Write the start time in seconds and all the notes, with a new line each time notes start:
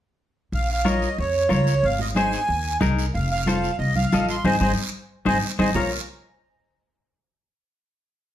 0.52 A#1 F5, long guiro
0.71 F5
0.85 F4 A#4 C#5 D#5, high conga, short guiro
1.02 short guiro
1.18 F2 C#5, long guiro
1.49 C#2 F4 A#4 C#5, high conga, short guiro
1.67 short guiro
1.83 G#1 F5, long guiro
1.99 D#5, low conga
2.15 D#4 G#4 C5 G#5, high conga, short guiro
2.32 short guiro
2.48 D#2, long guiro
2.81 C2 D#4 G#4 A#4, high conga, low conga, short guiro
2.99 short guiro
3.14 F1 F5, long guiro
3.31 F5
3.46 F4 A4 C5, high conga, short guiro
3.64 short guiro
3.79 C2 D#5, long guiro
3.96 F5, high conga
4.12 A1 F4 A4 D#5, high conga, short guiro
4.29 C6, short guiro
4.44 G#1 D#4 G#4 C5 D#5 G#5, high conga, long guiro
4.60 G#1 D#4 G#4 C5 D#5 G#5, high conga, long guiro
5.26 G#1 D#4 G#4 C5 D#5 G#5, high conga, long guiro
5.59 G#1 D#4 G#4 C5 D#5 G#5, high conga, long guiro
5.75 A#1 F4 A#4 C#5 A#5, low conga, long guiro